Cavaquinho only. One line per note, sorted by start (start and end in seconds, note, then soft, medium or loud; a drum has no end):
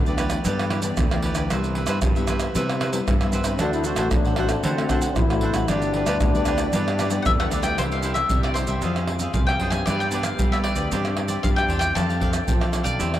0.07 0.18 G4 soft
0.07 0.18 B4 soft
0.07 0.19 D5 soft
0.18 0.31 E4 medium
0.18 0.30 G4 medium
0.18 0.29 B4 medium
0.18 0.28 D5 medium
0.30 0.44 G4 soft
0.30 0.44 B4 soft
0.30 0.43 D5 soft
0.45 0.69 E4 medium
0.45 0.69 G4 medium
0.45 0.69 B4 medium
0.45 0.70 D5 medium
0.70 0.80 E4 medium
0.70 0.80 G4 medium
0.70 0.80 B4 medium
0.70 0.80 D5 medium
0.83 1.10 G4 soft
0.83 1.09 B4 soft
0.83 1.09 D5 soft
1.11 1.23 G4 soft
1.11 1.23 B4 soft
1.11 1.23 D5 soft
1.23 1.36 E4 medium
1.23 1.36 G4 medium
1.23 1.36 B4 medium
1.23 1.35 D5 medium
1.36 1.49 G4 soft
1.36 1.49 B4 soft
1.36 1.49 D5 soft
1.51 1.75 E4 medium
1.51 1.76 B4 medium
1.51 1.76 C5 medium
1.51 1.76 E5 medium
1.76 1.87 E4 medium
1.76 1.88 B4 medium
1.76 1.87 C5 medium
1.76 1.88 E5 medium
1.88 1.98 E4 medium
1.88 1.98 B4 medium
1.88 1.98 C5 medium
1.88 1.98 E5 medium
2.17 2.28 B4 soft
2.17 2.28 C5 soft
2.17 2.28 E5 medium
2.28 2.40 E4 medium
2.28 2.40 B4 medium
2.28 2.41 C5 medium
2.28 2.39 E5 medium
2.40 2.53 B4 soft
2.40 2.54 C5 soft
2.40 2.53 E5 medium
2.55 2.79 E4 medium
2.55 2.80 B4 medium
2.55 2.79 C5 medium
2.55 2.80 E5 medium
2.80 2.90 E4 medium
2.80 2.90 B4 medium
2.80 2.90 C5 medium
2.80 2.90 E5 medium
2.92 3.19 B4 soft
2.92 3.19 C5 soft
2.92 3.18 E5 soft
3.21 3.33 B4 soft
3.21 3.33 C5 soft
3.21 3.33 E5 soft
3.33 3.45 E4 medium
3.33 3.45 B4 medium
3.33 3.46 C5 medium
3.33 3.44 E5 medium
3.45 3.58 B4 soft
3.45 3.59 C5 soft
3.45 3.58 E5 soft
3.60 3.84 D4 medium
3.60 3.85 A4 medium
3.60 3.85 C5 medium
3.60 3.85 F#5 medium
3.85 3.96 D4 medium
3.85 3.96 A4 soft
3.85 3.97 C5 medium
3.85 3.97 F#5 medium
3.97 4.07 D4 medium
3.97 4.07 A4 medium
3.97 4.07 C5 medium
3.97 4.08 F#5 medium
4.26 4.37 A4 soft
4.26 4.37 C5 soft
4.26 4.37 F#5 medium
4.37 4.50 D4 medium
4.37 4.50 A4 medium
4.37 4.49 C5 medium
4.37 4.48 F#5 medium
4.50 4.63 A4 soft
4.50 4.63 C5 soft
4.50 4.62 F#5 medium
4.64 4.89 D4 medium
4.64 4.89 A4 medium
4.64 4.89 C5 medium
4.64 4.90 F#5 medium
4.90 4.99 D4 medium
4.90 4.99 A4 medium
4.90 4.99 C5 medium
4.90 5.00 F#5 medium
5.01 5.28 A4 soft
5.01 5.28 C5 soft
5.01 5.27 F#5 soft
5.31 5.42 A4 soft
5.31 5.43 C5 soft
5.31 5.42 F#5 soft
5.42 5.54 D4 medium
5.42 5.55 A4 medium
5.42 5.55 C5 medium
5.42 5.54 F#5 medium
5.55 5.68 A4 soft
5.55 5.68 C5 medium
5.55 5.67 F#5 medium
5.70 5.94 D4 medium
5.70 5.95 G4 medium
5.70 5.95 B4 medium
5.70 5.95 D5 medium
5.95 6.06 D4 medium
5.95 6.06 G4 medium
5.95 6.07 B4 medium
5.95 6.07 D5 medium
6.07 6.16 D4 medium
6.07 6.16 G4 medium
6.07 6.17 B4 loud
6.07 6.17 D5 medium
6.36 6.46 G4 soft
6.36 6.47 B4 soft
6.36 6.47 D5 medium
6.47 6.59 D4 medium
6.47 6.59 G4 medium
6.47 6.59 B4 medium
6.47 6.58 D5 medium
6.59 6.72 G4 soft
6.59 6.72 B4 soft
6.59 6.72 D5 soft
6.74 6.98 D4 medium
6.74 6.98 G4 medium
6.74 6.99 B4 medium
6.74 7.00 D5 medium
6.99 7.08 D4 medium
6.99 7.08 G4 medium
6.99 7.09 B4 medium
6.99 7.09 D5 medium
7.11 7.38 G4 soft
7.11 7.37 B4 soft
7.11 7.37 D5 soft
7.40 7.51 G4 soft
7.40 7.52 B4 soft
7.40 7.51 D5 soft
7.51 7.63 D4 medium
7.51 7.64 G4 medium
7.51 7.63 B4 medium
7.51 7.62 D5 medium
7.63 7.77 G4 soft
7.63 7.76 B4 soft
7.63 7.76 D5 soft
7.78 7.90 E4 medium
7.78 7.90 G4 medium
7.78 7.91 C5 medium
7.78 7.91 E5 medium
7.93 8.03 G4 soft
7.93 8.04 C5 soft
7.93 8.04 E5 soft
8.03 8.16 E4 medium
8.03 8.16 G4 medium
8.03 8.16 C5 medium
8.03 8.16 E5 medium
8.17 muted cavaquinho stroke soft
8.45 8.56 G4 soft
8.45 8.56 C5 soft
8.45 8.56 E5 soft
8.56 8.68 E4 soft
8.56 8.68 G4 soft
8.56 8.68 C5 soft
8.56 8.67 E5 medium
8.68 8.82 G4 medium
8.68 8.81 C5 medium
8.68 8.81 E5 medium
8.83 8.94 F4 medium
8.83 8.95 G#4 medium
8.83 8.95 C5 medium
8.83 8.96 F5 medium
8.97 9.08 G#4 soft
8.97 9.08 C5 soft
8.97 9.08 F5 soft
9.08 muted cavaquinho stroke soft
9.21 9.47 G#4 medium
9.21 9.47 C5 medium
9.21 9.46 F5 medium
9.49 9.60 G#4 soft
9.49 9.61 C5 soft
9.49 9.60 F5 soft
9.61 9.73 F4 medium
9.61 9.73 G#4 medium
9.61 9.73 C5 medium
9.61 9.72 F5 medium
9.73 9.86 G#4 soft
9.73 9.86 C5 soft
9.73 9.85 F5 soft
9.88 9.99 D4 medium
9.88 10.00 G4 medium
9.88 10.00 B4 medium
9.88 10.00 D5 medium
10.02 10.12 G4 soft
10.02 10.13 B4 soft
10.02 10.13 D5 soft
10.12 10.24 D4 medium
10.12 10.24 G4 medium
10.12 10.24 B4 medium
10.12 10.25 D5 medium
10.25 muted cavaquinho stroke soft
10.53 10.63 G4 soft
10.53 10.64 B4 soft
10.53 10.65 D5 soft
10.63 10.76 D4 soft
10.63 10.76 G4 medium
10.63 10.75 B4 medium
10.63 10.74 D5 medium
10.75 10.90 G4 medium
10.75 10.89 B4 medium
10.75 10.89 D5 medium
10.91 11.03 D4 medium
10.91 11.04 G4 medium
10.91 11.04 C5 medium
10.91 11.04 D5 medium
11.05 11.16 G4 soft
11.05 11.16 C5 soft
11.05 11.16 D5 soft
11.17 muted cavaquinho stroke soft
11.28 11.55 G4 soft
11.28 11.55 C5 medium
11.28 11.54 D5 medium
11.57 11.67 G4 soft
11.57 11.68 C5 soft
11.57 11.69 D5 soft
11.68 11.81 D4 medium
11.68 11.80 G4 medium
11.68 11.79 C5 medium
11.68 11.78 D5 medium
11.79 11.94 G4 soft
11.79 11.94 C5 soft
11.79 11.93 D5 soft
11.95 12.07 D4 medium
11.95 12.08 A4 medium
11.95 12.08 D5 medium
11.95 12.08 F5 medium
12.09 12.20 A4 soft
12.09 12.20 D5 soft
12.09 12.21 F5 medium
12.20 12.31 D4 medium
12.20 12.31 A4 medium
12.20 12.32 D5 medium
12.20 12.32 F5 medium
12.33 muted cavaquinho stroke soft
12.61 12.72 A4 soft
12.61 12.72 D5 soft
12.61 12.73 F5 soft
12.72 12.85 D4 soft
12.72 12.84 A4 medium
12.72 12.84 D5 soft
12.72 12.82 F5 medium
12.83 12.98 A4 medium
12.83 12.98 D5 medium
12.83 12.97 F5 medium
12.99 13.11 E4 medium
12.99 13.12 G4 medium
12.99 13.12 C5 medium
12.99 13.12 E5 medium
13.13 13.20 G4 soft
13.13 13.20 C5 soft
13.13 13.20 E5 soft